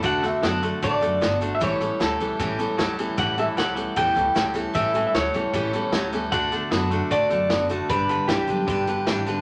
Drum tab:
HH |xxxxxxxx|xxxxxxxx|xxxxxxxx|xxxxxxxx|
SD |-oo---o-|--o---o-|--o---o-|--o---o-|
BD |o---o---|o---o---|o---o---|o---o---|

HH |xxxxxxxx|xxxxxxxx|
SD |-oo---o-|--o---o-|
BD |o---o---|o---o---|